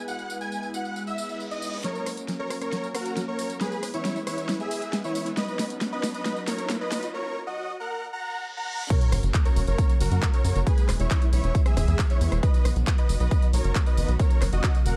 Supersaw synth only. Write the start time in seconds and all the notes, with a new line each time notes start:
0.08 F#5
0.41 G#5
0.74 F#5
1.07 E5
1.51 D#5
1.84 A#4 C#5
2.39 A#4 C#5
2.62 A#4 C#5
2.95 F#4 A#4
3.28 A#4 C#5
3.61 G#4 B4
3.94 E4 C#5
4.27 E4 C#5
4.60 G#4 E5
5.04 E4 C#5
5.37 B4 D#5
5.92 B4 D#5
6.15 B4 D#5
6.48 A#4 C#5
6.81 B4 D#5
7.14 A#4 C#5
7.47 F#4 D#5
7.80 A#4 F#5
8.13 F#5 A#5
8.57 F#5 A#5
8.90 A#4 C#5
9.45 A#4 C#5
9.67 A#4 C#5
10.00 F#4 A#4
10.33 A#4 C#5
10.67 G#4 B4
11.00 E4 C#5
11.33 E4 C#5
11.66 G#4 E5
12.10 E4 C#5
12.43 B4 D#5
12.98 B4 D#5
13.20 B4 D#5
13.53 A#4 C#5
13.86 B4 D#5
14.20 A#4 C#5
14.53 F#4 D#5
14.86 A#4 F#5